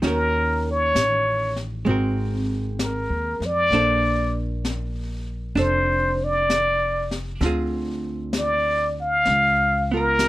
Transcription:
0.02 upright bass D#2, hollow-body jazz guitar D#3 C#4 F#4, brush sweep, snare
0.07 hollow-body jazz guitar A#4, muted trumpet A#4
0.71 muted trumpet C#5
0.95 upright bass A1, brush sweep, snare, hi-hat pedal
1.56 snare
1.85 upright bass G#1, hollow-body jazz guitar G#3 C4, brush sweep
1.89 hollow-body jazz guitar F#4 A#4
2.79 muted trumpet A#4, brush sweep, snare, hi-hat pedal
3.10 upright bass D#2
3.40 upright bass F2, snare
3.46 muted trumpet D5
3.70 upright bass A#1, hollow-body jazz guitar A#3 D4, brush sweep, snare
3.75 hollow-body jazz guitar A4 C5
4.65 brush sweep, snare, hi-hat pedal
5.55 upright bass F1, hollow-body jazz guitar D4 A4 C5, muted trumpet C5, brush sweep, snare
6.24 muted trumpet D5
6.50 brush sweep, snare, hi-hat pedal
7.11 snare
7.41 upright bass D2, hollow-body jazz guitar D3 C4 F4, brush sweep, snare
7.46 hollow-body jazz guitar G#4
8.33 brush sweep, snare, hi-hat pedal
8.38 muted trumpet D5
9.01 muted trumpet F5
9.25 upright bass C#2, brush sweep, snare
9.92 hollow-body jazz guitar B3 F4, muted trumpet A#4
9.97 hollow-body jazz guitar A#4
10.19 brush sweep, snare, hi-hat pedal

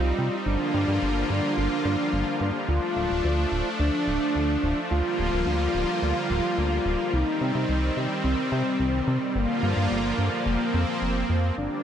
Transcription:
Already playing: analog synth bass C2, analog synth pad G3 C4 D#4, soft synth lead F4
0.19 analog synth bass C3
0.46 analog synth bass G1, analog synth pad D3 F3 A#3 F4, soft synth lead D4
0.74 analog synth bass G2
0.88 analog synth bass G2
1.02 analog synth bass G1
1.30 analog synth bass G2
1.57 analog synth bass G1
1.85 analog synth bass G2
2.13 analog synth bass G1
2.41 analog synth bass G2
2.69 analog synth bass D2, analog synth pad A3 D4, soft synth lead F4
2.96 analog synth bass D1
3.10 analog synth bass D1
3.24 analog synth bass D2
3.52 analog synth bass D1
3.80 analog synth bass D2, soft synth lead D4
4.07 analog synth bass D1
4.35 analog synth bass D2
4.63 analog synth bass D1
4.91 analog synth bass D2, analog synth pad D3 G3 A#3 F4, soft synth lead F4
5.19 analog synth bass D1
5.33 analog synth bass D1
5.46 analog synth bass D2
5.74 analog synth bass D1
6.02 analog synth bass D2
6.30 analog synth bass D1
6.58 analog synth bass D2
6.86 analog synth bass D1
7.13 analog synth bass C2, analog synth pad D#3 C4, soft synth lead D#4
7.41 analog synth bass C3
7.55 analog synth bass C3
7.69 analog synth bass C2
7.97 analog synth bass C3
8.24 analog synth bass C2, soft synth lead C4
8.52 analog synth bass C3
8.80 analog synth bass C2
9.07 analog synth bass C3
9.35 analog synth bass G1, analog synth pad D3 F3 A#3 F4, soft synth lead A#3
9.63 analog synth bass G2
9.77 analog synth bass G2
9.91 analog synth bass G1
10.18 analog synth bass G2
10.46 analog synth bass F1, analog synth pad C4
10.74 analog synth bass F2
11.02 analog synth bass F1
11.30 analog synth bass F2
11.58 analog synth bass G1, analog synth pad G3 A#3 D4, soft synth lead D4

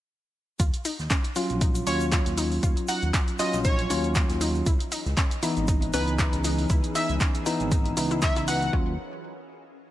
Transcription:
0.60 analog synth bass D#2, synth arpeggio sound F4, kick, closed hi-hat, shaker
0.73 closed hi-hat, shaker
0.85 synth arpeggio sound D#4, open hi-hat, shaker
0.99 analog synth bass D#2, snare, shaker
1.10 synth arpeggio sound C#4, kick, snare, clap, closed hi-hat, shaker
1.24 closed hi-hat, shaker
1.35 tine electric piano F#3 C#4 F4, synth arpeggio sound F4, open hi-hat, shaker
1.50 analog synth bass A#1, closed hi-hat, shaker
1.61 synth arpeggio sound D#4, kick, closed hi-hat, shaker
1.75 closed hi-hat, shaker
1.87 analog synth bass D#2, tine electric piano F#3 C#4 F4, synth arpeggio sound C#4, digital synth lead C#5, open hi-hat, shaker
2.00 closed hi-hat, shaker
2.12 synth arpeggio sound F4, kick, snare, clap, closed hi-hat, shaker
2.26 analog synth bass D#2, snare, closed hi-hat, shaker
2.37 synth arpeggio sound D#4, open hi-hat, shaker
2.52 open hi-hat, shaker
2.63 analog synth bass D#2, synth arpeggio sound F4, kick, closed hi-hat, shaker
2.77 closed hi-hat, shaker
2.88 synth arpeggio sound D#4, digital synth lead F#5, open hi-hat, shaker
3.02 analog synth bass D#2, closed hi-hat, shaker
3.14 synth arpeggio sound C#4, kick, snare, clap, closed hi-hat, shaker
3.28 closed hi-hat, shaker
3.39 tine electric piano F#3 C#4 F4, synth arpeggio sound F4, digital synth lead D#5, snare, open hi-hat, shaker
3.53 analog synth bass A#1, snare, closed hi-hat, shaker
3.64 synth arpeggio sound D#4, digital synth lead C#5, kick, closed hi-hat, shaker
3.79 closed hi-hat
3.90 analog synth bass D#2, tine electric piano F#3 C#4 F4, synth arpeggio sound C#4, open hi-hat, shaker
4.04 closed hi-hat, shaker
4.15 synth arpeggio sound F4, kick, snare, clap, closed hi-hat, shaker
4.30 analog synth bass D#2, snare, closed hi-hat, shaker
4.41 synth arpeggio sound D#4, open hi-hat, shaker
4.55 closed hi-hat, shaker
4.66 analog synth bass C#2, string machine E3 C#4 G#4 B4 D#5, synth arpeggio sound E4, kick, closed hi-hat, shaker
4.80 closed hi-hat, shaker
4.92 synth arpeggio sound D#4, open hi-hat, shaker
5.06 analog synth bass C#2, snare, shaker
5.17 synth arpeggio sound C#4, kick, snare, clap, closed hi-hat, shaker
5.31 closed hi-hat, shaker
5.43 tine electric piano E3 B3 D#4, synth arpeggio sound E4, open hi-hat, shaker
5.57 analog synth bass G#1, closed hi-hat, shaker
5.68 synth arpeggio sound D#4, kick, closed hi-hat, shaker
5.82 closed hi-hat
5.93 analog synth bass C#2, tine electric piano E3 B3 D#4, synth arpeggio sound C#4, digital synth lead B4, open hi-hat, shaker
6.08 closed hi-hat, shaker
6.19 synth arpeggio sound E4, kick, snare, clap, closed hi-hat, shaker
6.33 analog synth bass C#2, snare, closed hi-hat, shaker
6.44 synth arpeggio sound D#4, open hi-hat, shaker
6.58 open hi-hat, shaker
6.69 analog synth bass C#2, synth arpeggio sound E4, string machine E6, kick, closed hi-hat, shaker
6.84 closed hi-hat, shaker
6.95 synth arpeggio sound D#4, digital synth lead E5, open hi-hat, shaker
7.09 analog synth bass C#2, closed hi-hat, shaker
7.20 synth arpeggio sound C#4, kick, snare, clap, closed hi-hat, shaker
7.35 closed hi-hat, shaker
7.46 tine electric piano E3 B3 D#4, synth arpeggio sound E4, open hi-hat, shaker
7.60 analog synth bass G#1, closed hi-hat, shaker
7.71 synth arpeggio sound D#4, kick, closed hi-hat, shaker
7.86 closed hi-hat
7.97 analog synth bass C#2, tine electric piano E3 B3 D#4, synth arpeggio sound E4, open hi-hat, shaker
8.11 synth arpeggio sound E4, closed hi-hat, shaker
8.22 synth arpeggio sound E4, digital synth lead E5, kick, snare, clap, closed hi-hat, shaker
8.36 analog synth bass C#2, synth arpeggio sound E4, snare, closed hi-hat, shaker
8.47 synth arpeggio sound B4, digital synth lead F#5, open hi-hat, shaker
8.61 closed hi-hat, shaker
8.73 analog synth bass D#2, tine electric piano F#3 C#4 F4, synth arpeggio sound C#4, kick

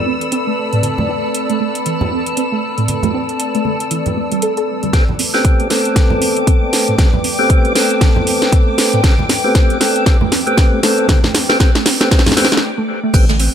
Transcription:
Already playing: analog synth pad A3 C4 B4 B5, ambient pad A4 D5 A5, string machine E6
0.06 synth arpeggio sound C4
0.21 closed hi-hat
0.32 synth arpeggio sound C4, closed hi-hat
0.47 synth arpeggio sound A3
0.72 synth arpeggio sound A2, closed hi-hat
0.83 closed hi-hat, high conga
0.98 synth arpeggio sound A3, high conga, low conga
1.09 synth arpeggio sound C4
1.34 closed hi-hat
1.49 synth arpeggio sound A3, closed hi-hat
1.60 synth arpeggio sound A3
1.75 closed hi-hat
1.86 synth arpeggio sound E3, closed hi-hat
2.01 low conga
2.11 synth arpeggio sound C4
2.26 closed hi-hat
2.37 synth arpeggio sound C4, closed hi-hat
2.52 synth arpeggio sound A3
2.78 synth arpeggio sound A2, closed hi-hat
2.88 closed hi-hat, high conga
3.03 synth arpeggio sound A3, closed hi-hat, low conga
3.14 synth arpeggio sound C4
3.29 closed hi-hat
3.40 closed hi-hat
3.54 synth arpeggio sound A3, closed hi-hat
3.65 synth arpeggio sound A3, high conga
3.80 closed hi-hat
3.91 synth arpeggio sound E3, closed hi-hat
4.06 closed hi-hat, low conga
4.16 synth arpeggio sound A3
4.32 synth arpeggio sound G3, closed hi-hat
4.42 synth arpeggio sound A4, closed hi-hat
4.57 synth arpeggio sound A4, closed hi-hat
4.83 synth arpeggio sound G3, closed hi-hat, high conga
4.93 analog synth bass A1, tonewheel organ A3 B3 C4 G4, analog synth pad A3 B4 G5, string machine D6, kick, snare, closed hi-hat, high conga
5.08 synth arpeggio sound A3, high conga, low conga
5.19 synth arpeggio sound C4, open hi-hat
5.34 analog synth bass D2, tonewheel organ A3 B3 C4 G4, snare
5.45 kick, closed hi-hat
5.60 synth arpeggio sound A3, closed hi-hat
5.70 tonewheel organ A3 B3 C4 A4, synth arpeggio sound A3, snare, open hi-hat
5.79 ambient pad G5
5.85 closed hi-hat
5.96 analog synth bass A1, synth arpeggio sound E3, kick, snare, closed hi-hat
6.10 low conga
6.21 analog synth bass A1, synth arpeggio sound C4, open hi-hat
6.37 closed hi-hat
6.47 synth arpeggio sound C4, kick, closed hi-hat
6.62 analog synth bass G1, synth arpeggio sound A3
6.73 analog synth bass E2, snare, open hi-hat
6.88 synth arpeggio sound A2, closed hi-hat
6.98 tonewheel organ A3 B3 C4 G4, kick, snare, closed hi-hat, high conga
7.14 synth arpeggio sound A3, low conga
7.24 synth arpeggio sound C4, open hi-hat
7.39 analog synth bass D2, tonewheel organ A3 B3 C4 G4
7.50 kick, closed hi-hat
7.65 synth arpeggio sound A3, closed hi-hat
7.75 tonewheel organ A3 B3 C4 A4, synth arpeggio sound A3, snare, open hi-hat
7.91 closed hi-hat
8.01 analog synth bass E2, synth arpeggio sound E3, kick, snare, closed hi-hat
8.16 low conga
8.27 analog synth bass C2, synth arpeggio sound C4, open hi-hat
8.42 analog synth bass A1, snare, closed hi-hat
8.52 synth arpeggio sound C4, kick, closed hi-hat
8.67 synth arpeggio sound A3
8.78 analog synth bass A1, snare, open hi-hat
8.93 analog synth bass A1, synth arpeggio sound A2, closed hi-hat
9.03 analog synth bass A1, tonewheel organ A3 B3 C4 G4, kick, snare, closed hi-hat, high conga
9.18 synth arpeggio sound A3, high conga, low conga
9.29 synth arpeggio sound C4, snare, open hi-hat
9.44 analog synth bass D2, tonewheel organ A3 B3 C4 G4
9.55 kick, snare, closed hi-hat
9.70 synth arpeggio sound A3, closed hi-hat
9.80 tonewheel organ A3 B3 C4 A4, synth arpeggio sound A3, snare, open hi-hat
9.96 closed hi-hat
10.06 analog synth bass A1, tonewheel organ A3 B3 C4 G4, kick, snare, closed hi-hat
10.21 synth arpeggio sound A3, low conga
10.32 analog synth bass A1, synth arpeggio sound C4, snare, open hi-hat
10.47 tonewheel organ A3 B3 C4 G4, closed hi-hat
10.58 kick, snare, closed hi-hat
10.72 analog synth bass G1, synth arpeggio sound A3
10.82 analog synth bass E2, tonewheel organ A3 B3 C4 A4, synth arpeggio sound A3, snare, open hi-hat
10.98 closed hi-hat
11.08 tonewheel organ A3 B3 C4 G4, kick, snare, closed hi-hat, high conga
11.23 synth arpeggio sound A3, snare, low conga
11.35 synth arpeggio sound C4, snare, open hi-hat
11.49 analog synth bass D2, tonewheel organ A3 B3 C4 G4, snare
11.60 tonewheel organ A3 B3 C4 G4, kick, snare, closed hi-hat
11.75 synth arpeggio sound A3, snare, closed hi-hat
11.86 synth arpeggio sound C4, snare, open hi-hat
12.00 tonewheel organ A3 B3 C4 G4, snare, closed hi-hat
12.11 analog synth bass E2, tonewheel organ A3 B3 C4 G4, kick, snare, closed hi-hat
12.19 snare
12.26 synth arpeggio sound A3, snare, open hi-hat, low conga
12.32 snare
12.37 tonewheel organ A3 B3 C4 G4, snare, open hi-hat
12.44 snare
12.52 synth arpeggio sound A3, snare, closed hi-hat
12.57 snare
12.78 synth arpeggio sound A3
13.03 synth arpeggio sound A3
13.13 analog synth bass A1, tonewheel organ A3 B3 C4 G4, analog synth pad A3 B4 G5, kick, closed hi-hat, crash, high conga, shaker
13.29 synth arpeggio sound A3, snare, high conga, shaker
13.39 synth arpeggio sound C4, closed hi-hat, open hi-hat

